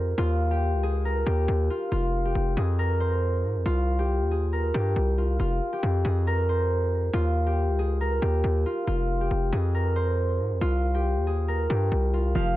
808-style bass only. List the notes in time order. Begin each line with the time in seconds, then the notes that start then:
Already playing: F2
0.18 D#2
0.73 C#2
1.27 D#2
1.48 D#2
1.92 F1
2.35 F1
2.57 F2
3.44 G#2
3.55 F2
3.66 C2
4.21 D#2
4.74 G2
4.96 C2
5.40 F1
5.83 F2
6.05 F2
7.13 D#2
7.68 C#2
8.22 D#2
8.44 D#2
8.87 F1
9.31 F1
9.53 F2
10.40 G#2
10.51 F2
10.61 C2
11.16 D#2
11.70 G2
11.92 C2
12.35 F1